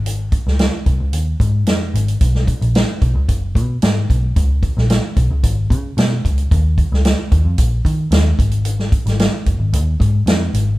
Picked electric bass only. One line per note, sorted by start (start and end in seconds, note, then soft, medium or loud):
0.00 0.31 G#1 medium
0.47 0.67 C#2 medium
0.86 0.97 C2 medium
1.00 1.14 C#2 medium
1.14 1.35 D#2 loud
1.40 1.68 G#2 loud
1.68 1.89 F2 medium
1.94 2.15 G#1 medium
2.21 2.53 B1 loud
2.61 2.82 A#1 medium
3.02 3.12 B1 medium
3.15 3.26 C#2 medium
3.29 3.57 F#1 medium
3.55 3.77 B2 loud
3.83 4.04 G#2 loud
4.10 4.31 B1 medium
4.36 4.68 C#2 loud
4.77 4.98 A#1 medium
5.17 5.27 B1 medium
5.30 5.41 C#2 medium
5.44 5.72 G#1 medium
5.70 5.91 C#3 loud
5.97 6.18 B2 medium
6.25 6.46 C#2 medium
6.51 6.83 D#2 loud
6.92 7.13 C#2 medium
7.32 7.43 D#2 medium
7.45 7.56 F2 medium
7.58 7.80 A#1 loud
7.85 8.06 D#3 medium
8.11 8.32 D#2 medium
8.39 8.91 G#1 medium
9.06 9.27 G#1 loud
9.46 9.57 F#1 medium
9.60 9.74 G#1 medium
9.73 9.94 D#2 loud
10.00 10.21 G#2 loud
10.26 10.48 F2 medium
10.54 10.75 G#1 medium